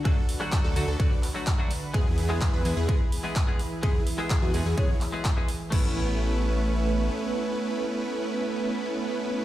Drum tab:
CC |----------------|----------------|----------------|x---------------|
RD |x---x---x---x---|x---x---x---x---|x---x---x---x---|----------------|
HH |--o---o---o---o-|--o---o---o---o-|--o---o---o---o-|----------------|
CP |----x-----x-x---|----x-------x---|----x-----x-x---|----------------|
SD |r--r------------|r--r------------|r--r------------|----------------|
BD |o---o---o---o---|o---o---o---o---|o---o---o---o---|o---------------|

CC |----------------|
RD |----------------|
HH |----------------|
CP |----------------|
SD |----------------|
BD |----------------|